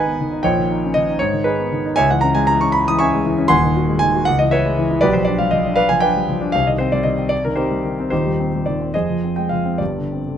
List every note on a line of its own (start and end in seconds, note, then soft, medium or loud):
0.00 0.38 G#1 medium
0.00 0.39 G#2 medium
0.00 0.21 D#3 medium
0.00 0.32 D#4 medium
0.00 0.40 B4 medium
0.00 0.39 D#5 medium
0.00 0.44 F#5 loud
0.00 0.43 G#5 loud
0.06 0.25 B3 medium
0.21 0.39 D#3 medium
0.32 0.43 D#4 medium
0.43 1.18 A#1 medium
0.43 1.18 A#2 medium
0.43 0.91 C#5 medium
0.43 0.91 D#5 medium
0.43 0.94 G5 loud
0.57 0.77 D#3 soft
0.71 0.90 D#4 medium
0.85 1.03 C#4 medium
0.94 1.15 D#3 medium
0.94 1.19 D#5 loud
1.10 1.21 D#4 medium
1.19 1.96 G#2 medium
1.19 1.45 C#5 medium
1.33 1.53 D#3 medium
1.44 1.84 D#4 medium
1.44 1.93 G#4 medium
1.44 1.96 B4 medium
1.60 1.80 B3 medium
1.72 1.92 D#3 medium
1.85 1.97 D#4 medium
1.96 3.47 C#2 medium
1.96 2.09 C#5 medium
1.96 2.09 E5 medium
1.96 2.09 G#5 loud
2.10 2.31 E3 medium
2.10 2.23 F#5 medium
2.21 2.43 C#4 medium
2.21 2.34 A#5 loud
2.35 2.56 G#3 medium
2.35 2.47 G#5 loud
2.47 2.69 E3 medium
2.47 2.60 A#5 loud
2.61 2.99 C#4 medium
2.61 2.73 C#6 medium
2.72 2.86 B5 loud
2.88 3.08 E3 medium
2.88 3.00 D#6 loud
2.99 3.21 C#4 medium
2.99 3.47 E5 medium
2.99 3.47 G#5 medium
2.99 3.50 C#6 loud
3.15 3.34 G#3 medium
3.26 3.45 E3 medium
3.38 3.51 C#4 medium
3.48 4.24 D#1 medium
3.48 4.24 D#2 medium
3.48 3.97 F#5 medium
3.48 3.97 G#5 medium
3.48 4.00 C6 loud
3.64 3.84 D#3 medium
3.76 3.96 F#4 medium
3.89 4.09 G#3 medium
3.99 4.21 D#3 medium
3.99 4.25 G#5 loud
4.15 4.27 F#4 medium
4.25 4.99 C#2 medium
4.25 4.38 F#5 loud
4.39 4.59 E3 medium
4.39 4.51 D#5 loud
4.51 4.72 E4 medium
4.51 4.98 B4 medium
4.51 4.98 C#5 medium
4.51 5.01 E5 medium
4.66 4.84 G#3 medium
4.78 4.97 E3 medium
4.91 5.02 E4 medium
5.01 6.52 B1 medium
5.01 5.13 G4 medium
5.01 5.13 B4 medium
5.01 5.13 D5 loud
5.13 5.34 F3 soft
5.13 5.26 C5 medium
5.25 5.47 D4 medium
5.25 5.38 D5 loud
5.39 5.60 G3 medium
5.39 5.52 F5 medium
5.51 5.73 F3 medium
5.51 5.77 D#5 medium
5.66 6.01 D4 medium
5.76 5.89 B4 medium
5.76 5.89 D5 medium
5.76 5.89 F5 loud
5.89 6.11 F3 medium
5.89 6.02 G#5 loud
6.00 6.23 D4 medium
6.00 6.50 B4 medium
6.00 6.50 D5 medium
6.00 6.53 G5 loud
6.16 6.37 G3 medium
6.29 6.50 F3 medium
6.41 6.54 D4 medium
6.52 8.08 C2 medium
6.52 6.66 F5 loud
6.67 6.88 D#3 soft
6.67 6.80 D#5 medium
6.78 7.01 C4 medium
6.78 6.92 C5 medium
6.92 7.14 G3 medium
6.92 7.05 D5 medium
7.03 7.26 D#3 medium
7.03 7.30 D#5 medium
7.19 7.56 C4 soft
7.29 7.43 D5 loud
7.45 7.66 D#3 medium
7.45 7.58 A#4 medium
7.56 7.79 C4 soft
7.56 8.07 D#4 medium
7.56 8.07 G4 medium
7.56 8.09 C5 medium
7.71 7.93 G3 soft
7.85 8.06 D#3 medium
8.00 8.12 C4 medium
8.10 8.91 D#1 medium
8.10 8.91 D#2 medium
8.10 8.62 D#4 medium
8.10 8.62 G4 medium
8.10 8.65 C5 medium
8.26 8.47 G3 soft
8.40 8.61 C4 soft
8.54 8.75 G3 soft
8.66 8.88 D#3 soft
8.66 8.93 D5 medium
8.82 8.94 C4 soft
8.94 9.79 F2 medium
8.94 9.33 G#4 medium
8.94 9.33 C5 medium
8.94 9.36 D#5 medium
9.10 9.31 F3 soft
9.24 9.45 C4 soft
9.36 9.60 G#3 soft
9.36 9.50 G5 medium
9.49 9.75 F3 soft
9.49 9.79 F5 medium
9.65 9.80 C4 soft
9.78 10.38 G1 soft
9.78 10.38 G2 medium
9.78 10.38 G4 soft
9.78 10.38 D5 medium
9.98 10.21 D3 soft
10.12 10.35 C4 soft
10.28 10.38 D3 soft